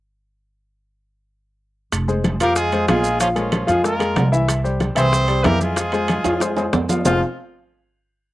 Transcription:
1.92 F1, high bongo, high conga, high timbale, maracas
2.08 G#3 G#4 C5, high conga, maracas
2.24 high bongo, high conga, high timbale, low timbale, maracas
2.40 F2 F3 A#3 F4 G4 A#4 F5, high timbale, maracas
2.56 G#3 F4 G#4, high bongo, high conga, maracas
2.72 G#3 G#4 C5, high conga, high timbale, maracas
2.88 A#1 F3 G#3 F4 G#4 F5, high bongo, low bongo, high conga, high timbale, low timbale, maracas
3.04 maracas
3.20 F3 C#4 F4 F5, high bongo, high conga, high timbale, maracas
3.36 F3 G#3 C#4 F4 G#4 A#4, high conga, high timbale, maracas
3.52 high bongo, high conga, high timbale, low timbale, maracas
3.67 F2 F3 G#3 F4 G#4 F5, high bongo, high conga, high timbale, maracas
3.83 G#3 A#3 F4 G#4 A#4, high bongo, high conga, maracas
3.99 G#3 G#4 A#4, high bongo, high conga, high timbale, maracas
4.16 C2, high bongo, low bongo, high conga, high timbale, low timbale, maracas
4.32 E3 E4 E5, high bongo, maracas
4.48 high bongo, high conga, high timbale, maracas
4.64 G3 G4 C5, high conga, maracas
4.80 high bongo, high conga, high timbale, low timbale, maracas
4.95 C2 E3 C4 E4 G#4 C5 E5, high conga, high timbale, maracas
5.13 high bongo, high conga, maracas
5.27 G3 G4 C5, high conga, high timbale, maracas
5.43 F2 E3 A#3 E4 G4 A#4 E5, high bongo, low bongo, high conga, high timbale, low timbale, maracas
5.61 G#3 F4 G#4, high conga, maracas
5.76 F3 F4 F5, high bongo, high timbale, maracas
5.92 G#3 G#4 C5, high conga, high timbale, maracas
6.08 high bongo, high conga, high timbale, low timbale, maracas
6.24 F2 F3 F4 F5, high bongo, high conga, high timbale, maracas
6.40 G#3 G#4 C5, high bongo, high conga, high timbale, maracas
6.57 G#3 G#4 C5, high bongo, high conga, high timbale, maracas
6.73 F2, high bongo, low bongo, high conga, low timbale, maracas
6.89 F3 F4 F5, high bongo, high conga, low timbale, maracas
7.05 F1 F3 C4 F4 G#4 C5 F5, low bongo, low conga, low timbale, maracas

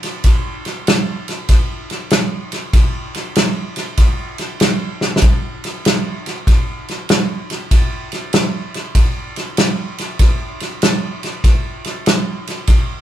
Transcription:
0.03 snare, ride
0.24 kick, snare, ride
0.65 snare, ride
0.87 snare, ride
1.28 snare, ride
1.48 kick, snare, ride
1.90 snare, ride
2.10 snare, ride
2.52 snare, ride
2.73 kick, snare, ride
3.14 snare, ride
3.35 snare, ride
3.76 snare, ride
3.97 kick, snare, ride
4.38 snare, ride
4.60 snare, ride
5.01 snare
5.16 snare
5.22 kick, snare, ride
5.64 snare, ride
5.85 snare, ride
6.26 snare, ride
6.47 kick, snare, ride
6.88 snare, ride
7.09 snare, ride
7.50 snare, ride
7.71 kick, snare, ride
8.12 snare, ride
8.33 snare, ride
8.74 snare, ride
8.95 kick, snare, ride
9.36 snare, ride
9.57 snare, ride
9.98 snare, ride
10.19 kick, snare, ride
10.60 snare, ride
10.82 snare, ride
11.23 snare, ride
11.44 kick, snare, ride
11.84 snare, ride
12.06 snare, ride
12.47 snare, ride
12.67 kick, snare, ride

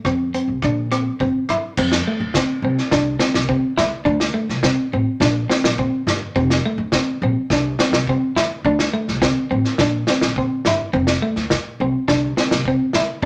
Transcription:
0.04 F2 C4, kick, cross-stick
0.34 C4, closed hi-hat
0.48 C2
0.62 A#1 D4, kick, cross-stick
0.92 C4, cross-stick, closed hi-hat
1.20 G1 C4, kick
1.49 G2 E4, cross-stick, closed hi-hat
1.77 F2 C4, kick, crash
1.92 snare
2.07 A3
2.20 D2
2.34 C4, kick, snare
2.62 C2 C4
2.78 snare
2.91 C2 D4, kick, snare
3.19 C4, snare
3.34 C2, snare
3.49 C4, kick
3.77 C#2 E4, snare
4.05 D2 D4, kick
4.20 snare
4.34 A3
4.49 C2, snare
4.63 C4, kick, snare
4.93 A1 C4
5.20 A#1 D4, kick, snare
5.50 C4, snare
5.64 A#1, snare
5.78 C4, kick
6.07 G1, snare
6.36 F1 C4, kick
6.50 snare
6.66 A3
6.78 D2
6.92 C4, kick, snare
7.22 A#1 C4
7.50 C2 D4, kick, snare
7.79 C4, snare
7.92 C2, snare
8.07 C4, kick
8.36 E2 E4, snare
8.65 D2 D4, kick
8.79 snare
8.94 A3
9.08 C2, snare
9.22 C4, kick, snare
9.51 A1 C4
9.65 snare
9.78 A#1 D4, kick, snare
10.07 C4, snare
10.21 A#1, snare
10.36 C4, kick
10.65 G1 E4, snare
10.93 F1 C4, kick
11.07 snare
11.22 A3
11.36 D2, snare
11.50 kick, snare
11.80 C2 C4
12.08 C2 D4, kick, snare
12.37 C4, snare
12.51 C2, snare
12.65 C4, kick
12.93 C#2 E4, snare

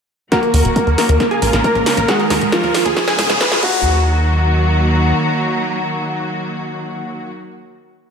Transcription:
0.32 D#3 F#3 A#3 F#4 A#4 F#5, kick, snare, closed hi-hat, riser
0.43 A#4, closed hi-hat
0.54 D#2 A#4, open hi-hat
0.65 D#1, closed hi-hat
0.76 A#4, kick, closed hi-hat
0.87 D#2 A#4, closed hi-hat
0.98 A#3 A#4, snare, open hi-hat
1.09 D#2 A#4, closed hi-hat
1.20 C#3 G#3 F4 A#4, kick, snare, closed hi-hat
1.31 G#4 G#5, closed hi-hat
1.42 A#1 A#4, open hi-hat
1.53 A#1 A#4, snare, closed hi-hat
1.64 A#3 A#4 A#5, kick, closed hi-hat
1.75 A#1 A#4, closed hi-hat
1.86 A#4, snare, open hi-hat
1.97 A#1 A#4, closed hi-hat
2.08 D#3 G#3 F#4 G#4 F#5, kick, snare, closed hi-hat
2.19 A#4, closed hi-hat
2.30 D#2 A#4, snare, open hi-hat
2.41 D#1, closed hi-hat
2.52 F3 F4 A#4, kick, snare, closed hi-hat
2.63 D#2 A#4, closed hi-hat
2.75 snare, open hi-hat
2.85 D#2 G#4, closed hi-hat
2.97 C#3 G#3 B3 G#4, kick, snare, closed hi-hat
3.08 G#4 G#5, snare, closed hi-hat
3.19 C#2 G#4, snare, open hi-hat
3.30 C#2 G#4, snare, closed hi-hat
3.41 B4 B5, kick, snare, closed hi-hat
3.52 C#2 G#4, snare, closed hi-hat
3.63 D#2 D#3 F#3 A#3 F#4 A#5, kick, crash

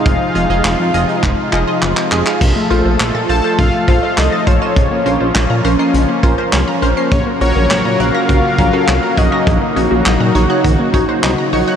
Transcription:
Already playing: C3 G#3 D#4 F5
0.06 F1 F3 F4, kick, closed hi-hat
0.35 F1 F4 G#4 D#5, closed hi-hat
0.50 F1 F4 G#4 D#5, closed hi-hat
0.64 F1, snare, clap, closed hi-hat
0.79 F2
0.94 F1 F4 G#4 D#5, closed hi-hat
1.09 closed hi-hat
1.23 F1, kick, clap
1.53 F1 F4 G#4 D#5, clap
1.67 F4 G#4 D#5
1.82 F#1, clap
1.97 clap
2.12 F1 F4 G#4 D#5, clap
2.26 F4 G#4 F5, clap
2.41 A#1 C3 F3 A3 F4 A4, kick, crash
2.56 A3
2.70 A#1 F4 A4 C5, closed hi-hat
2.85 A#1 C5
3.00 A#1 C6, snare, clap, closed hi-hat
3.15 A#2 A6
3.29 A#1 F4 A4 C5 A5 E7, closed hi-hat
3.44 F4 A4 C5 E7
3.59 A#1 C3 F5, kick, closed hi-hat
3.74 A3
3.88 A#1 F4 A4 C5 F5, kick, closed hi-hat
4.03 F4 A4 C5 D#5
4.18 C2 D#5 C6, snare, clap, closed hi-hat
4.32 A6
4.47 A#1 F4 A4 C5 C#5 E7, kick, closed hi-hat
4.62 F4 A4 D#5 E7
4.76 A#1 C#3 A#3 C#4, kick, closed hi-hat
4.91 A#3
5.06 A#1 C#4 F4 A#4 C5, closed hi-hat
5.20 A#1 C5
5.35 A#1 C#5, snare, clap, closed hi-hat
5.50 A#2 A#5
5.64 A#1 C#4 A#4 C5 F6, closed hi-hat
5.79 C#4 A#4 D#5 C7
5.94 A#1 C#3, closed hi-hat
6.09 A#3
6.23 A#1 C#4 F4 A#4 C5, kick, closed hi-hat
6.38 C#4 A#4 C5
6.53 C2 C#5, snare, clap, closed hi-hat
6.68 A#5
6.82 A#1 C#4 A#4 C5 F6, closed hi-hat
6.97 C#4 A#4 C5 C7
7.12 A#1 C#3 F#3 F#4 A#4 C#5, kick, closed hi-hat
7.26 A#3
7.41 A#1 C#4 F#4 A#4 C#5, closed hi-hat
7.56 A#1 A#4
7.70 A#1 C#5, snare, clap, closed hi-hat
7.85 A#2 A#5
8.00 A#1 C#4 F#4 A#4 F5 F#6, closed hi-hat
8.14 C#4 F#4 A#4 A#6
8.29 A#1 C#3, kick, closed hi-hat
8.44 A#3
8.58 A#1 C#4 F#4 A#4, kick, closed hi-hat
8.73 C#4 F#4 A4 A#4
8.88 C2 C#5, snare, clap, closed hi-hat
9.03 A#5
9.17 A#1 C#4 F#4 A#4 D#5 F#6, kick, closed hi-hat
9.32 C#4 F#4 A#4 A#6
9.47 A#1 D#3 D#4 F#4, kick, closed hi-hat
9.62 A#3
9.76 A#1 C#4 D#4 F#4 C#5, closed hi-hat
9.91 A#1 F#4
10.06 A#1 D#5, snare, clap
10.20 A#2 A#5
10.35 A#1 D#4 F#4 C#5 C#6, closed hi-hat
10.50 D#4 F#4 C#5 F#6
10.64 A#1 D#3, kick, closed hi-hat
10.79 A#3
10.94 A#1 C#4 D#4 F#4 C#5, kick, closed hi-hat
11.09 D#4 F#4 C5
11.23 C2 D#5, snare, clap, closed hi-hat
11.38 A#5
11.53 A#1 D#4 F#4 C#5 C#6, open hi-hat
11.68 D#4 F#4 C#5 F#6

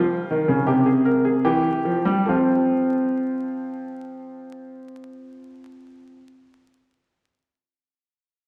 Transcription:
Already playing: F3 F4
0.30 D#3
0.48 C#3
0.67 C3 G4
0.86 G#4
1.05 A#4
1.25 G#4
1.45 E3 G4
1.85 F3
2.05 G3
2.26 F3 C4 F4 A4

